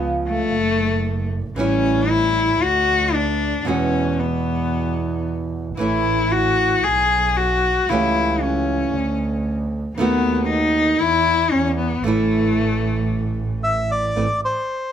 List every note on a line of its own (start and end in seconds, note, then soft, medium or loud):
0.00 0.49 C#2 medium
0.00 0.52 C#3 medium
0.00 0.53 F3 medium
0.00 0.53 G#3 medium
0.00 0.54 B3 medium
0.00 0.54 F4 medium
0.28 1.27 A3 loud
0.54 1.52 F#1 medium
1.56 2.56 A1 medium
1.56 2.60 E3 medium
1.56 2.60 G3 medium
1.56 2.11 C#4 medium
1.56 2.61 C#4 medium
1.56 2.61 E4 medium
2.09 2.64 E4 medium
2.62 3.61 D2 medium
2.62 3.16 F#4 loud
3.14 3.69 D4 medium
3.65 5.68 E2 medium
3.65 5.77 B2 medium
3.65 5.76 E3 medium
3.65 5.78 G#3 medium
3.65 5.79 B3 medium
3.65 4.21 C#4 medium
3.65 5.79 F#4 medium
4.20 5.26 B3 medium
5.77 6.80 A1 medium
5.77 6.83 E3 medium
5.77 6.84 A3 medium
5.77 6.85 C#4 medium
5.77 6.34 E4 medium
5.77 6.85 E4 medium
6.32 6.85 F#4 medium
6.84 7.85 B1 medium
6.84 7.38 G#4 medium
7.37 7.91 F#4 medium
7.89 8.89 C#2 medium
7.89 8.93 C#3 medium
7.89 8.94 E3 medium
7.89 8.94 A3 medium
7.89 8.95 C#4 medium
7.89 8.44 E4 medium
7.89 8.95 G4 medium
8.42 9.47 C#4 medium
8.95 9.94 D2 medium
9.98 10.97 D#2 medium
9.98 11.00 D#3 medium
9.98 11.01 A3 medium
9.98 10.46 B3 medium
9.98 11.01 B3 medium
9.98 11.02 F#4 medium
10.49 11.01 D#4 loud
11.00 11.51 E2 medium
11.00 11.53 E4 loud
11.52 12.03 E2 medium
11.52 11.77 C#4 medium
11.78 12.05 B3 medium
12.04 14.06 A1 medium
12.04 14.15 E3 medium
12.04 13.62 A3 medium
12.04 14.15 A3 medium
12.04 14.16 C#4 medium
12.08 14.16 E4 medium
13.64 13.91 E5 medium
13.91 14.41 D5 medium
14.16 14.39 A1 medium
14.16 14.26 E3 medium
14.16 14.26 A3 medium
14.16 14.26 C4 medium
14.16 14.26 E4 medium
14.45 14.92 C5 medium